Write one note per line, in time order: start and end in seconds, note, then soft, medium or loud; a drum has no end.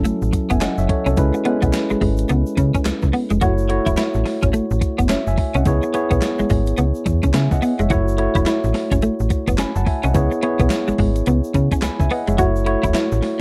0.00 1.19 F#3 medium
0.00 1.17 C#4 medium
0.00 1.18 E4 medium
0.00 0.90 A4 loud
0.05 0.12 A1 medium
0.05 0.15 A3 medium
0.05 closed hi-hat medium
0.05 shaker medium
0.22 0.31 A1 medium
0.22 shaker medium
0.33 muted clean electric guitar stroke soft
0.33 kick medium
0.33 closed hi-hat medium
0.33 shaker medium
0.50 0.60 F#1 medium
0.50 0.57 B3 medium
0.50 0.61 E5 soft
0.50 0.61 G#5 medium
0.50 kick medium
0.50 closed hi-hat medium
0.50 shaker medium
0.61 0.72 C#4 medium
0.61 0.78 D#5 medium
0.61 0.77 F#5 medium
0.61 snare loud
0.61 clap loud
0.61 closed hi-hat medium
0.61 shaker medium
0.78 0.88 F#1 medium
0.78 0.88 C#5 medium
0.78 0.89 E5 medium
0.78 shaker medium
0.89 1.05 A4 medium
0.89 1.05 C#5 medium
0.89 muted clean electric guitar stroke soft
0.89 kick medium
0.89 closed hi-hat medium
1.06 1.16 C2 medium
1.06 1.13 C#4 medium
1.06 1.33 F#4 soft
1.06 1.33 A4 medium
1.06 closed hi-hat soft
1.06 shaker soft
1.17 1.32 C#2 loud
1.17 1.39 G#3 medium
1.17 1.39 C#4 medium
1.17 1.39 E4 medium
1.17 1.39 B4 loud
1.17 kick loud
1.17 closed hi-hat medium
1.17 shaker medium
1.34 muted clean electric guitar stroke soft
1.34 shaker soft
1.45 2.26 G#3 medium
1.45 1.56 B3 medium
1.45 2.26 C#4 medium
1.45 2.26 E4 medium
1.45 2.26 B4 medium
1.45 closed hi-hat medium
1.62 1.72 B1 medium
1.62 1.69 B3 medium
1.62 kick loud
1.62 closed hi-hat medium
1.62 shaker medium
1.73 muted clean electric guitar stroke soft
1.73 snare loud
1.73 clap medium
1.73 closed hi-hat medium
1.73 shaker medium
1.90 1.95 G#1 soft
1.90 1.97 G#3 medium
1.90 shaker soft
2.01 2.25 G#1 medium
2.01 2.12 G#3 medium
2.01 kick medium
2.01 open hi-hat medium
2.17 closed hi-hat medium
2.17 shaker medium
2.29 2.44 C#2 loud
2.29 2.40 B3 medium
2.29 closed hi-hat medium
2.29 shaker medium
2.46 shaker medium
2.57 2.72 C#3 loud
2.57 muted clean electric guitar stroke soft
2.57 kick medium
2.57 closed hi-hat medium
2.57 shaker medium
2.74 2.81 C#4 medium
2.74 kick medium
2.74 closed hi-hat soft
2.74 shaker medium
2.85 2.93 C#2 soft
2.85 muted clean electric guitar stroke soft
2.85 snare loud
2.85 clap medium
2.85 closed hi-hat medium
2.85 shaker medium
3.02 3.12 C#2 medium
3.02 kick medium
3.02 shaker medium
3.13 3.24 B3 medium
3.13 open hi-hat medium
3.30 3.40 F1 medium
3.30 3.37 G#3 medium
3.30 closed hi-hat medium
3.30 shaker soft
3.41 3.80 F#1 loud
3.41 3.63 A3 medium
3.41 3.63 E4 medium
3.41 3.52 F#4 medium
3.41 3.63 F#4 medium
3.41 3.64 C#5 loud
3.41 kick loud
3.41 closed hi-hat medium
3.41 shaker medium
3.58 shaker soft
3.69 4.50 A3 medium
3.69 4.50 E4 medium
3.69 4.50 F#4 medium
3.69 4.51 C#5 medium
3.69 muted clean electric guitar stroke soft
3.69 closed hi-hat medium
3.86 3.96 E1 medium
3.86 3.93 E4 medium
3.86 kick loud
3.86 closed hi-hat medium
3.86 shaker medium
3.97 4.08 E4 medium
3.97 snare loud
3.97 clap medium
3.97 closed hi-hat medium
3.97 shaker medium
4.14 4.24 A1 medium
4.14 shaker soft
4.25 muted clean electric guitar stroke soft
4.25 snare medium
4.25 open hi-hat medium
4.42 4.52 G#1 medium
4.42 4.49 C#4 medium
4.42 kick loud
4.42 closed hi-hat medium
4.42 shaker medium
4.53 4.61 A1 medium
4.53 4.64 A3 medium
4.53 closed hi-hat medium
4.53 shaker medium
4.71 4.80 A1 medium
4.71 shaker soft
4.81 muted clean electric guitar stroke soft
4.81 kick medium
4.81 closed hi-hat medium
4.81 shaker medium
4.98 5.08 F#1 medium
4.98 5.05 B3 medium
4.98 kick medium
4.98 closed hi-hat medium
4.98 shaker medium
5.09 5.20 C#4 medium
5.09 5.27 C#5 medium
5.09 5.26 E5 medium
5.09 snare loud
5.09 clap loud
5.09 closed hi-hat medium
5.09 shaker medium
5.27 5.36 F#1 medium
5.27 5.54 E5 medium
5.27 5.54 G#5 medium
5.27 shaker medium
5.37 muted clean electric guitar stroke soft
5.37 kick medium
5.37 open hi-hat medium
5.54 5.64 C2 medium
5.54 5.62 C#4 medium
5.54 5.82 D#5 soft
5.54 5.82 F#5 medium
5.54 closed hi-hat soft
5.54 shaker soft
5.65 5.80 C#2 loud
5.65 5.88 B3 medium
5.65 5.88 E4 medium
5.65 5.88 G#4 medium
5.65 5.88 C#5 loud
5.65 kick loud
5.65 closed hi-hat medium
5.65 shaker medium
5.83 muted clean electric guitar stroke soft
5.83 shaker soft
5.94 6.74 B3 medium
5.94 6.04 B3 medium
5.94 6.75 E4 medium
5.94 6.75 G#4 medium
5.94 6.75 C#5 medium
5.94 closed hi-hat medium
5.94 shaker soft
6.11 6.20 B1 medium
6.11 6.17 B3 medium
6.11 kick loud
6.11 closed hi-hat medium
6.11 shaker medium
6.22 muted clean electric guitar stroke soft
6.22 snare loud
6.22 clap medium
6.22 closed hi-hat medium
6.22 shaker medium
6.39 6.44 G#1 medium
6.39 6.46 G#3 medium
6.39 shaker soft
6.50 6.74 G#1 loud
6.50 6.61 G#3 medium
6.50 kick medium
6.50 open hi-hat medium
6.50 shaker medium
6.66 closed hi-hat medium
6.66 shaker soft
6.77 6.93 C#2 loud
6.77 6.88 B3 medium
6.77 closed hi-hat medium
6.77 shaker medium
6.95 shaker medium
7.06 7.20 E2 medium
7.06 muted clean electric guitar stroke soft
7.06 kick medium
7.06 closed hi-hat medium
7.06 shaker medium
7.23 7.32 C#2 medium
7.23 7.30 C#4 medium
7.23 kick medium
7.23 closed hi-hat soft
7.23 shaker medium
7.34 7.49 C#3 medium
7.34 7.51 E5 medium
7.34 7.50 G#5 medium
7.34 muted clean electric guitar stroke soft
7.34 snare loud
7.34 clap medium
7.34 closed hi-hat medium
7.34 shaker medium
7.51 7.61 C#2 medium
7.51 7.78 D#5 medium
7.51 7.78 F#5 medium
7.51 kick medium
7.51 shaker medium
7.62 7.73 B3 medium
7.62 open hi-hat medium
7.62 shaker soft
7.79 7.89 F1 medium
7.79 7.86 G#3 medium
7.79 7.90 C#5 medium
7.79 8.06 E5 medium
7.79 closed hi-hat soft
7.79 shaker soft
7.90 8.29 F#1 loud
7.90 8.12 A3 medium
7.90 8.12 E4 medium
7.90 8.01 F#4 medium
7.90 8.12 F#4 medium
7.90 8.12 C#5 loud
7.90 kick loud
7.90 closed hi-hat medium
7.90 shaker medium
8.08 shaker medium
8.18 8.99 A3 medium
8.18 8.99 E4 medium
8.18 8.99 F#4 medium
8.18 8.99 C#5 medium
8.18 muted clean electric guitar stroke soft
8.18 closed hi-hat medium
8.35 8.45 E1 loud
8.35 8.42 E4 medium
8.35 kick loud
8.35 closed hi-hat medium
8.35 shaker medium
8.46 8.57 E4 medium
8.46 snare loud
8.46 clap medium
8.46 closed hi-hat medium
8.46 shaker medium
8.64 8.73 A1 medium
8.64 shaker soft
8.74 muted clean electric guitar stroke soft
8.74 snare medium
8.74 open hi-hat medium
8.91 9.01 G#1 medium
8.91 8.98 C#4 medium
8.91 kick loud
8.91 closed hi-hat medium
8.91 shaker medium
9.02 9.13 A3 medium
9.02 closed hi-hat medium
9.02 shaker medium
9.20 9.29 A1 medium
9.20 shaker medium
9.30 muted clean electric guitar stroke soft
9.30 kick medium
9.30 closed hi-hat medium
9.30 shaker medium
9.48 9.57 F#1 medium
9.48 9.54 B3 medium
9.48 kick medium
9.48 closed hi-hat medium
9.48 shaker medium
9.58 9.66 F#1 soft
9.58 9.69 C#4 medium
9.58 9.75 G#5 medium
9.58 9.75 B5 medium
9.58 snare loud
9.58 clap medium
9.58 closed hi-hat medium
9.58 shaker medium
9.76 9.85 F#1 medium
9.76 9.86 F#5 medium
9.76 9.86 A5 medium
9.76 shaker medium
9.86 10.03 E5 medium
9.86 10.03 G#5 medium
9.86 muted clean electric guitar stroke soft
9.86 kick medium
9.86 open hi-hat medium
10.03 10.13 C2 medium
10.03 10.10 C#4 medium
10.03 10.31 D#5 soft
10.03 10.30 F#5 medium
10.03 closed hi-hat medium
10.03 shaker soft
10.14 10.29 C#2 loud
10.14 10.36 B3 medium
10.14 10.36 E4 medium
10.14 10.36 G#4 medium
10.14 10.36 C#5 loud
10.14 kick loud
10.14 closed hi-hat medium
10.14 shaker medium
10.31 muted clean electric guitar stroke soft
10.31 shaker medium
10.42 11.23 B3 medium
10.42 10.53 B3 medium
10.42 11.23 E4 medium
10.42 11.23 G#4 medium
10.42 11.24 C#5 medium
10.42 closed hi-hat medium
10.59 10.69 B1 loud
10.59 10.66 B3 medium
10.59 kick loud
10.59 closed hi-hat medium
10.59 shaker soft
10.70 muted clean electric guitar stroke soft
10.70 snare loud
10.70 clap medium
10.70 closed hi-hat medium
10.70 shaker medium
10.88 10.93 G#1 medium
10.88 10.95 G#3 medium
10.88 shaker soft
10.98 11.22 G#1 loud
10.98 11.09 G#3 medium
10.98 kick medium
10.98 open hi-hat medium
11.16 closed hi-hat medium
11.16 shaker medium
11.26 11.42 C#2 loud
11.26 11.37 B3 medium
11.26 closed hi-hat medium
11.26 shaker medium
11.44 shaker medium
11.54 11.69 C#3 loud
11.54 muted clean electric guitar stroke soft
11.54 kick medium
11.54 closed hi-hat medium
11.54 shaker medium
11.72 11.79 C#4 medium
11.72 kick medium
11.72 closed hi-hat medium
11.72 shaker medium
11.82 11.90 C#2 soft
11.82 11.99 G#5 medium
11.82 11.99 B5 medium
11.82 muted clean electric guitar stroke soft
11.82 snare loud
11.82 clap loud
11.82 closed hi-hat medium
11.82 shaker medium
12.00 12.09 C#2 medium
12.00 12.10 E5 medium
12.00 12.10 G#5 medium
12.00 kick medium
12.00 shaker soft
12.10 12.21 B3 medium
12.10 12.27 D#5 medium
12.10 12.27 F#5 medium
12.10 open hi-hat medium
12.27 12.37 F1 medium
12.27 12.34 G#3 medium
12.27 12.38 C#5 medium
12.27 12.54 E5 medium
12.27 closed hi-hat medium
12.27 shaker soft
12.38 12.77 F#1 loud
12.38 12.60 A3 loud
12.38 12.60 E4 medium
12.38 12.49 F#4 medium
12.38 12.60 F#4 medium
12.38 12.61 C#5 loud
12.38 kick loud
12.38 closed hi-hat medium
12.38 shaker medium
12.56 shaker soft
12.66 13.41 A3 medium
12.66 13.41 E4 medium
12.66 13.41 F#4 medium
12.66 13.41 C#5 loud
12.66 muted clean electric guitar stroke soft
12.66 closed hi-hat medium
12.83 12.93 E1 medium
12.83 12.90 E4 medium
12.83 kick loud
12.83 closed hi-hat soft
12.83 shaker medium
12.94 13.05 E4 medium
12.94 snare loud
12.94 clap medium
12.94 closed hi-hat medium
12.94 shaker medium
13.12 13.21 A1 medium
13.12 shaker medium
13.22 muted clean electric guitar stroke soft
13.22 snare medium
13.22 open hi-hat medium